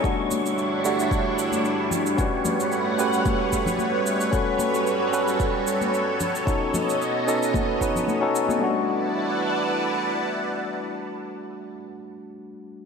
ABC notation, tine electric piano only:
X:1
M:4/4
L:1/16
Q:"Swing 16ths" 1/4=112
K:Edor
V:1 name="Tine electric piano"
[G,A,DF]6 [G,A,DF] z8 z | [CFGB]6 [CFGB] z8 z | [CFAB]6 [CFAB] z8 z | [C^DFA]6 [CDFA] z3 [CDFB] z2 [CDFA] z2 |
[G,A,DF]16- | [G,A,DF]16 |]